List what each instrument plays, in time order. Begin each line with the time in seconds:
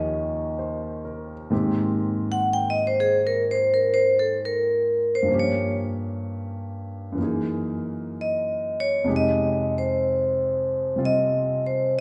Already playing: grand piano D#2 D#3 F3 C#4 G4, vibraphone D#5
0.59 grand piano C5
1.05 grand piano A#4
1.50 grand piano G#2 D#3 A#3 C4 G4
2.32 vibraphone F#5
2.53 vibraphone G5
2.70 vibraphone D#5
2.87 vibraphone C5
3.00 vibraphone G#4
3.27 vibraphone A#4
3.51 vibraphone C5
3.74 vibraphone A#4
3.94 vibraphone C5
4.19 vibraphone A4
4.45 vibraphone A#4
5.15 vibraphone C5
5.23 grand piano G2 F3
5.28 grand piano A#3 C#4
5.34 grand piano G4
5.39 vibraphone C#5
7.12 grand piano F#2 E3
7.18 grand piano A#3 D#4
7.23 grand piano G#4
8.21 vibraphone D#5
8.80 vibraphone C#5
9.04 grand piano F2 C3 G#3 D#4
9.09 grand piano G4
9.16 vibraphone D#5
9.78 vibraphone C5
10.96 grand piano C3 G3 C4 F4
11.05 vibraphone D#5
11.66 vibraphone C5